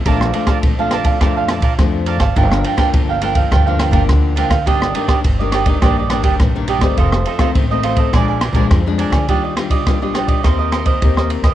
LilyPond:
<<
  \new Staff \with { instrumentName = "Cavaquinho" } { \time 4/4 \key bes \major \tempo 4 = 104 <bes' d'' f'' a''>8 <bes' d'' f'' a''>16 <bes' d'' f'' a''>16 r16 <d'' f'' a''>16 <bes' d'' f'' a''>16 <d'' f'' a''>16 <bes' d'' f'' a''>16 <d'' f'' a''>16 <bes' d'' f'' a''>16 <bes' d'' f'' a''>16 r8 <bes' d'' f'' a''>16 <d'' f'' a''>16 | <d' bes' f'' g''>8 <d' bes' f'' g''>16 <d' bes' f'' g''>16 r16 <bes' f'' g''>16 <d' bes' f'' g''>16 <bes' f'' g''>16 <d' bes' f'' g''>16 <bes' f'' g''>16 <d' bes' f'' g''>16 <d' bes' f'' g''>16 r8 <d' bes' f'' g''>16 <bes' f'' g''>16 | <d' g' d'' ees''>8 <d' g' d'' ees''>16 <d' g' d'' ees''>16 r16 <g' d'' ees''>16 <d' g' d'' ees''>16 <g' d'' ees''>16 <d' g' d'' ees''>16 <g' d'' ees''>16 <d' g' d'' ees''>16 <d' g' d'' ees''>16 r8 <d' g' d'' ees''>16 <g' d'' ees''>16 | <f' a' c'' ees''>8 <f' a' c'' ees''>16 <f' a' c'' ees''>16 r16 <a' c'' ees''>16 <f' a' c'' ees''>16 <a' c'' ees''>16 <d' bes' d'' aes''>16 <bes' d'' aes''>16 <d' bes' d'' aes''>16 <d' bes' d'' aes''>16 r8 <d' bes' d'' aes''>16 <bes' d'' aes''>16 |
\key ees \major <d' g' d'' ees''>16 <g' d'' ees''>16 r16 <g' d'' ees''>8 <g' d'' ees''>16 <d' g' d'' ees''>16 <g' d'' ees''>16 <ees' bes' c'' ees''>16 <bes' c'' ees''>16 <ees' bes' c'' ees''>16 <bes' c'' ees''>8 <bes' c'' ees''>16 r16 <bes' c'' ees''>16 | }
  \new Staff \with { instrumentName = "Nylon-string guitar" } { \time 4/4 \key bes \major << { <f a d'>8 <f a d'>8. <f a d'>8. <f a d'>8. r16 <f a d'>8. r16 | <f bes d'>16 <f bes d'>8 <f bes d'>8. <f bes d'>8. <f bes d'>8 <f bes d'>8. <f bes d'>16 r16 | <ees bes d'>8 <ees bes d'>8 r16 <ees bes d'>8 <ees bes d'>16 <ees bes d'>16 r16 <ees bes d'>8. <ees bes d'>8 <ees a c'>16~ | <ees a c'>8 r16 <ees a c'>8 <ees a c'>8. <f aes d'>8 r16 <f aes d'>8 <f aes d'>8. |
\key ees \major <g d' f'>8 <g d' f'>8 <g d' f'>16 <g d' f'>8. <bes c' g'>4 <bes c' g'>8. r16 | } \\ { bes,4 f,4 bes,4 f,4 | g,4 d4 g,4 d4 | g,4 g,4 g,4 g,4 | f,4 c4 bes,4 f,4 |
ees4 bes,4 ees4 ees4 | } >> }
  \new Staff \with { instrumentName = "Upright bass" } { \clef bass \time 4/4 \key bes \major bes,,8 r8 bes,,4 f,8. bes,,16 f,8. aes,,16 | g,,8 r8 g,,4 d,8. g,,16 d,8. d,16 | g,,8 r8 g,,4 bes,,8. g,,16 bes,,8. g,,16 | f,,8 r8 a,,4 bes,,8. bes,,16 f,8. d,16 |
\key ees \major ees,4 bes,,4 ees,4 ees,8. ees,16 | }
  \new DrumStaff \with { instrumentName = "Drums" } \drummode { \time 4/4 <bd cymr>16 ss16 cymr16 <bd cymr ss>16 <bd cymr>8 <cymr ss>16 <bd cymr>16 <bd cymr ss>8 <cymr ss>16 <bd cymr>16 <bd cymr ss>8 cymr16 <bd cymr ss>16 | <bd cymr>16 ss16 cymr16 <bd cymr ss>16 <bd cymr>8 cymr16 <bd cymr>16 <bd cymr ss>8 <cymr ss>16 <bd cymr>16 <bd cymr ss>8 cymr16 <bd cymr ss>16 | <bd cymr>16 ss16 cymr16 <bd cymr ss>16 <bd cymr>8 <cymr ss>16 <bd cymr>16 <bd cymr ss>8 <cymr ss>16 <bd cymr>16 <bd cymr ss>8 cymr16 <bd cymr ss>16 | <bd cymr>16 ss16 cymr16 <bd cymr ss>16 <bd cymr>8 cymr16 <bd cymr>16 <bd cymr ss>8 <cymr ss>16 <bd cymr>16 <bd cymr ss>8 cymr16 <bd cymr ss>16 |
<bd cymr>8 <cymr ss>16 <bd cymr>16 <bd cymr ss>8 <cymr ss>16 <bd cymr>16 <bd cymr ss>8 <cymr ss>16 <bd cymr>16 <bd cymr>16 ss16 cymr16 <bd cymr ss>16 | }
>>